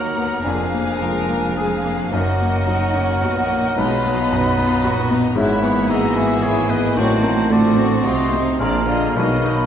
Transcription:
Already playing: D#2 A#2 F#3 A#3 D#4 F#4 A#4 F#5 A#5
0.14 A#3 B3
0.43 F1 F2 F3 A#3 D4 G#4 F5 G#5
0.73 A#3 G#4
1.00 F3 G#3 A#4
1.30 A#3
1.57 G#3 G#4 F5
1.83 A#3
2.11 F#1 F#2 F#3 A#3 D#4 F#4 A#4 D#5 F#5
2.38 A#3 D#5
2.67 F#3 D#4
2.95 A#3 C#4
3.22 A#1 A#2 B3 F#4 D#5
3.50 A#3
3.75 B1 B2 G#3 B3 D#4 F4 B4 B5
4.04 F#3 B3
4.32 F#2 B3 D#4
4.58 B3 F4
4.83 A#1 A#2 F#4
5.11 B3 D#4
5.35 G#1 G#2 F#3 G#3 A#3 E4 B4 E5 B5
5.41 E4
5.62 E3 B3 C#5
5.89 G#3 F#4 G#4 D#5 E5 A#5
6.16 B3 E5 G#5
6.42 E4 G#4 C#5 E5 G#5
6.69 B3 B4 D#5
6.95 A1 A2 D#3 F#3 C4 F#4 C5 D5
6.99 A5
7.22 C4 D#4 F#4
7.50 D3 A3 F4 C5 D5 A5
7.77 C4 F#4
8.04 C2 C3 F4 F#4 D#5 C6
8.33 C4 D#4
8.58 A#1 A#2 F3 A#3 D4 G#4 D5 F5 A#5
8.87 D3 D4 F4 D#5
9.16 B1 B2 D#3 F#3 G#3 D#4 F#4 D#5 B5
9.44 F#3 D#4

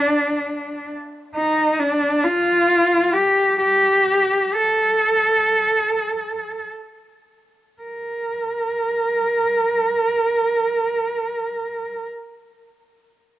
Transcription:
Already playing: D4
1.36 D#4
1.80 D4
2.25 F4
3.13 G4
3.58 G4
4.55 A4
7.82 A#4

